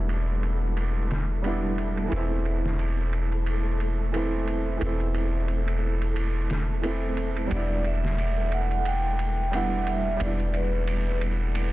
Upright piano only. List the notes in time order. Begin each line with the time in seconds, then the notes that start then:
Already playing: G3 B3 D4 E4
1.42 G3 B3 D4
1.47 E4
2.08 E3 A3
2.13 C4 E4
4.12 E3 A3 C4
4.16 E4
4.77 E3 A3
4.83 C4 E4
6.82 E3 A3 C4
6.86 E4
7.47 G3 B3
7.53 D4 E4
9.51 G3 B3 D4
9.55 E4
10.16 G3 B3
10.22 D4 E4